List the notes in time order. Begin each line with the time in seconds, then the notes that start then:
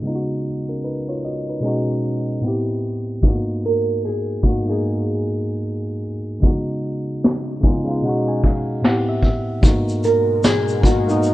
0.02 C#3 G#3 B3
0.07 D#4 F4
0.15 F#4
0.69 C#4 A#4
0.84 D#4 B4
1.09 F4 C#5
1.25 F#4 D#5
1.49 D#4 B4
1.60 B2 G#3 C#4
1.66 D#4 F#4
2.41 A2 B3 C4
2.46 E4 G4
3.21 G#2 A#3 B3, kick
3.27 D#4 F#4
3.63 A#4, closed hi-hat
4.05 G#4
4.43 G#2 A#3 B3 F#4, kick, closed hi-hat
4.48 D#4 F#4
4.65 G#2 A#3 B3 G#4
4.70 D#4 G#4
5.23 closed hi-hat
6.02 closed hi-hat
6.40 C#3 G#3 B3, kick
6.45 D#4 F#4
6.84 closed hi-hat
7.24 snare
7.61 C#3 G#3 B3 G#5, kick
7.65 D#4 F4, closed hi-hat
7.84 C#3 G#3 B3 F5
7.89 D#4 F4
8.02 B2 G#3 C#4 F#5
8.07 D#4 F#4
8.28 G#5
8.43 F5, kick, closed hi-hat
8.82 A2 B3 C4 F#5, snare
8.87 E4 G4
9.09 E5
9.22 E5, kick, closed hi-hat
9.61 G#2 B2 G#3 A#3 B3 F#4 A#4, kick, shaker
9.67 D#4 F#4
9.89 shaker
10.04 A#4, closed hi-hat, shaker
10.44 G#4, snare, shaker
10.68 shaker
10.81 G#2 A#3 B3, kick
10.85 D#4 F#4, closed hi-hat, shaker
11.06 G#2 A#3 B3 D#4, shaker
11.11 D#4 F#4
11.23 shaker